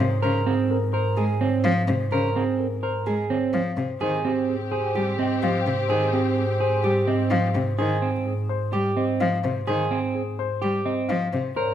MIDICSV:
0, 0, Header, 1, 7, 480
1, 0, Start_track
1, 0, Key_signature, -4, "major"
1, 0, Tempo, 472441
1, 231, Time_signature, 4, 2, 24, 8
1, 11929, End_track
2, 0, Start_track
2, 0, Title_t, "Clarinet"
2, 0, Program_c, 0, 71
2, 4075, Note_on_c, 0, 72, 70
2, 7632, Note_off_c, 0, 72, 0
2, 11755, Note_on_c, 0, 73, 70
2, 11929, Note_off_c, 0, 73, 0
2, 11929, End_track
3, 0, Start_track
3, 0, Title_t, "Grand piano"
3, 0, Program_c, 1, 0
3, 0, Note_on_c, 1, 72, 73
3, 213, Note_off_c, 1, 72, 0
3, 228, Note_on_c, 1, 72, 76
3, 464, Note_on_c, 1, 68, 59
3, 542, Note_off_c, 1, 72, 0
3, 715, Note_on_c, 1, 70, 68
3, 780, Note_off_c, 1, 68, 0
3, 945, Note_on_c, 1, 72, 80
3, 1024, Note_off_c, 1, 70, 0
3, 1184, Note_on_c, 1, 68, 60
3, 1260, Note_off_c, 1, 72, 0
3, 1435, Note_on_c, 1, 73, 61
3, 1500, Note_off_c, 1, 68, 0
3, 1668, Note_on_c, 1, 77, 72
3, 1744, Note_off_c, 1, 73, 0
3, 1908, Note_on_c, 1, 72, 59
3, 1982, Note_off_c, 1, 77, 0
3, 2139, Note_off_c, 1, 72, 0
3, 2154, Note_on_c, 1, 72, 80
3, 2396, Note_on_c, 1, 68, 63
3, 2464, Note_off_c, 1, 72, 0
3, 2634, Note_on_c, 1, 70, 53
3, 2704, Note_off_c, 1, 68, 0
3, 2873, Note_on_c, 1, 72, 75
3, 2943, Note_off_c, 1, 70, 0
3, 3117, Note_on_c, 1, 68, 57
3, 3183, Note_off_c, 1, 72, 0
3, 3358, Note_on_c, 1, 73, 60
3, 3425, Note_off_c, 1, 68, 0
3, 3598, Note_on_c, 1, 77, 66
3, 3665, Note_off_c, 1, 73, 0
3, 3838, Note_on_c, 1, 72, 55
3, 3905, Note_off_c, 1, 77, 0
3, 4066, Note_off_c, 1, 72, 0
3, 4081, Note_on_c, 1, 72, 71
3, 4319, Note_on_c, 1, 67, 53
3, 4386, Note_off_c, 1, 72, 0
3, 4557, Note_on_c, 1, 68, 57
3, 4625, Note_off_c, 1, 67, 0
3, 4790, Note_on_c, 1, 72, 76
3, 4865, Note_off_c, 1, 68, 0
3, 5026, Note_on_c, 1, 67, 53
3, 5102, Note_off_c, 1, 72, 0
3, 5277, Note_on_c, 1, 75, 56
3, 5341, Note_off_c, 1, 67, 0
3, 5519, Note_on_c, 1, 77, 66
3, 5585, Note_off_c, 1, 75, 0
3, 5752, Note_on_c, 1, 72, 62
3, 5825, Note_off_c, 1, 77, 0
3, 5963, Note_off_c, 1, 72, 0
3, 5978, Note_on_c, 1, 72, 72
3, 6222, Note_on_c, 1, 67, 53
3, 6298, Note_off_c, 1, 72, 0
3, 6468, Note_on_c, 1, 68, 56
3, 6539, Note_off_c, 1, 67, 0
3, 6713, Note_on_c, 1, 72, 73
3, 6782, Note_off_c, 1, 68, 0
3, 6946, Note_on_c, 1, 67, 57
3, 7023, Note_off_c, 1, 72, 0
3, 7185, Note_on_c, 1, 75, 59
3, 7261, Note_off_c, 1, 67, 0
3, 7429, Note_on_c, 1, 77, 69
3, 7501, Note_off_c, 1, 75, 0
3, 7672, Note_on_c, 1, 72, 62
3, 7742, Note_off_c, 1, 77, 0
3, 7895, Note_off_c, 1, 72, 0
3, 7910, Note_on_c, 1, 72, 76
3, 8222, Note_off_c, 1, 72, 0
3, 8391, Note_on_c, 1, 68, 61
3, 8630, Note_on_c, 1, 72, 76
3, 8703, Note_off_c, 1, 68, 0
3, 8875, Note_on_c, 1, 67, 59
3, 8942, Note_off_c, 1, 72, 0
3, 9110, Note_on_c, 1, 75, 58
3, 9184, Note_off_c, 1, 67, 0
3, 9356, Note_on_c, 1, 77, 73
3, 9422, Note_off_c, 1, 75, 0
3, 9590, Note_on_c, 1, 72, 67
3, 9664, Note_off_c, 1, 77, 0
3, 9818, Note_off_c, 1, 72, 0
3, 9833, Note_on_c, 1, 72, 76
3, 10143, Note_off_c, 1, 72, 0
3, 10313, Note_on_c, 1, 68, 63
3, 10557, Note_on_c, 1, 72, 83
3, 10623, Note_off_c, 1, 68, 0
3, 10792, Note_on_c, 1, 67, 59
3, 10864, Note_off_c, 1, 72, 0
3, 11027, Note_on_c, 1, 75, 62
3, 11103, Note_off_c, 1, 67, 0
3, 11264, Note_on_c, 1, 77, 76
3, 11341, Note_off_c, 1, 75, 0
3, 11515, Note_on_c, 1, 72, 60
3, 11580, Note_off_c, 1, 77, 0
3, 11733, Note_off_c, 1, 72, 0
3, 11749, Note_on_c, 1, 72, 80
3, 11929, Note_off_c, 1, 72, 0
3, 11929, End_track
4, 0, Start_track
4, 0, Title_t, "Clean electric guitar"
4, 0, Program_c, 2, 27
4, 228, Note_on_c, 2, 70, 80
4, 472, Note_on_c, 2, 60, 73
4, 542, Note_off_c, 2, 70, 0
4, 783, Note_off_c, 2, 60, 0
4, 952, Note_on_c, 2, 70, 60
4, 1192, Note_on_c, 2, 68, 62
4, 1263, Note_off_c, 2, 70, 0
4, 1432, Note_on_c, 2, 60, 78
4, 1503, Note_off_c, 2, 68, 0
4, 1743, Note_off_c, 2, 60, 0
4, 2156, Note_on_c, 2, 70, 83
4, 2400, Note_on_c, 2, 60, 62
4, 2464, Note_off_c, 2, 70, 0
4, 2706, Note_off_c, 2, 60, 0
4, 2877, Note_on_c, 2, 70, 58
4, 3117, Note_on_c, 2, 68, 59
4, 3185, Note_off_c, 2, 70, 0
4, 3355, Note_on_c, 2, 60, 72
4, 3425, Note_off_c, 2, 68, 0
4, 3664, Note_off_c, 2, 60, 0
4, 4074, Note_on_c, 2, 68, 73
4, 4315, Note_on_c, 2, 60, 57
4, 4383, Note_off_c, 2, 68, 0
4, 4624, Note_off_c, 2, 60, 0
4, 4792, Note_on_c, 2, 68, 53
4, 5034, Note_on_c, 2, 67, 56
4, 5103, Note_off_c, 2, 68, 0
4, 5272, Note_on_c, 2, 60, 69
4, 5343, Note_off_c, 2, 67, 0
4, 5583, Note_off_c, 2, 60, 0
4, 5992, Note_on_c, 2, 68, 70
4, 6230, Note_on_c, 2, 60, 59
4, 6303, Note_off_c, 2, 68, 0
4, 6542, Note_off_c, 2, 60, 0
4, 6710, Note_on_c, 2, 68, 57
4, 6950, Note_on_c, 2, 67, 63
4, 7022, Note_off_c, 2, 68, 0
4, 7188, Note_on_c, 2, 60, 69
4, 7262, Note_off_c, 2, 67, 0
4, 7502, Note_off_c, 2, 60, 0
4, 7911, Note_on_c, 2, 68, 75
4, 8149, Note_on_c, 2, 60, 61
4, 8222, Note_off_c, 2, 68, 0
4, 8462, Note_off_c, 2, 60, 0
4, 8869, Note_on_c, 2, 67, 63
4, 9111, Note_on_c, 2, 60, 75
4, 9182, Note_off_c, 2, 67, 0
4, 9422, Note_off_c, 2, 60, 0
4, 9829, Note_on_c, 2, 68, 79
4, 10068, Note_on_c, 2, 60, 67
4, 10142, Note_off_c, 2, 68, 0
4, 10381, Note_off_c, 2, 60, 0
4, 10786, Note_on_c, 2, 67, 57
4, 11030, Note_on_c, 2, 60, 69
4, 11101, Note_off_c, 2, 67, 0
4, 11342, Note_off_c, 2, 60, 0
4, 11752, Note_on_c, 2, 70, 77
4, 11929, Note_off_c, 2, 70, 0
4, 11929, End_track
5, 0, Start_track
5, 0, Title_t, "String section"
5, 0, Program_c, 3, 48
5, 4078, Note_on_c, 3, 67, 58
5, 4083, Note_on_c, 3, 60, 62
5, 7634, Note_off_c, 3, 67, 0
5, 7636, Note_off_c, 3, 60, 0
5, 11754, Note_on_c, 3, 61, 73
5, 11754, Note_on_c, 3, 70, 67
5, 11929, Note_off_c, 3, 61, 0
5, 11929, Note_off_c, 3, 70, 0
5, 11929, End_track
6, 0, Start_track
6, 0, Title_t, "Cello"
6, 0, Program_c, 4, 42
6, 0, Note_on_c, 4, 48, 64
6, 172, Note_off_c, 4, 48, 0
6, 231, Note_on_c, 4, 49, 79
6, 411, Note_off_c, 4, 49, 0
6, 1189, Note_on_c, 4, 56, 69
6, 1369, Note_off_c, 4, 56, 0
6, 1670, Note_on_c, 4, 53, 84
6, 1850, Note_off_c, 4, 53, 0
6, 1908, Note_on_c, 4, 48, 55
6, 2089, Note_off_c, 4, 48, 0
6, 2147, Note_on_c, 4, 49, 78
6, 2328, Note_off_c, 4, 49, 0
6, 3115, Note_on_c, 4, 56, 56
6, 3293, Note_off_c, 4, 56, 0
6, 3590, Note_on_c, 4, 53, 69
6, 3770, Note_off_c, 4, 53, 0
6, 3831, Note_on_c, 4, 48, 47
6, 4011, Note_off_c, 4, 48, 0
6, 4068, Note_on_c, 4, 51, 71
6, 4249, Note_off_c, 4, 51, 0
6, 5034, Note_on_c, 4, 55, 58
6, 5212, Note_off_c, 4, 55, 0
6, 5511, Note_on_c, 4, 53, 73
6, 5691, Note_off_c, 4, 53, 0
6, 5755, Note_on_c, 4, 48, 55
6, 5933, Note_off_c, 4, 48, 0
6, 5989, Note_on_c, 4, 51, 69
6, 6170, Note_off_c, 4, 51, 0
6, 6949, Note_on_c, 4, 55, 61
6, 7129, Note_off_c, 4, 55, 0
6, 7422, Note_on_c, 4, 53, 79
6, 7605, Note_off_c, 4, 53, 0
6, 7668, Note_on_c, 4, 48, 55
6, 7849, Note_off_c, 4, 48, 0
6, 7908, Note_on_c, 4, 51, 80
6, 8089, Note_off_c, 4, 51, 0
6, 8869, Note_on_c, 4, 55, 63
6, 9049, Note_off_c, 4, 55, 0
6, 9352, Note_on_c, 4, 53, 78
6, 9531, Note_off_c, 4, 53, 0
6, 9593, Note_on_c, 4, 48, 54
6, 9772, Note_off_c, 4, 48, 0
6, 9827, Note_on_c, 4, 51, 77
6, 10008, Note_off_c, 4, 51, 0
6, 10794, Note_on_c, 4, 55, 66
6, 10973, Note_off_c, 4, 55, 0
6, 11273, Note_on_c, 4, 53, 78
6, 11452, Note_off_c, 4, 53, 0
6, 11512, Note_on_c, 4, 48, 56
6, 11691, Note_off_c, 4, 48, 0
6, 11929, End_track
7, 0, Start_track
7, 0, Title_t, "Double bass"
7, 0, Program_c, 5, 43
7, 0, Note_on_c, 5, 44, 72
7, 3935, Note_off_c, 5, 44, 0
7, 4074, Note_on_c, 5, 44, 60
7, 11616, Note_off_c, 5, 44, 0
7, 11753, Note_on_c, 5, 44, 73
7, 11929, Note_off_c, 5, 44, 0
7, 11929, End_track
0, 0, End_of_file